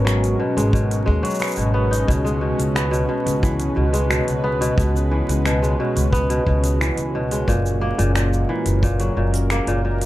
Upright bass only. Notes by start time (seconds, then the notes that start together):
Already playing: G#1
0.57 G#1
1.08 D#2
1.57 G#1
2.08 C#2
2.59 C#2
3.26 C#2
3.77 C#2
4.28 C#2
4.78 C#2
5.29 C#2
5.96 C#2
6.46 C#2
6.98 C#2
7.47 F#1
7.99 F#1
8.66 F#1
9.17 F#1
9.67 F#1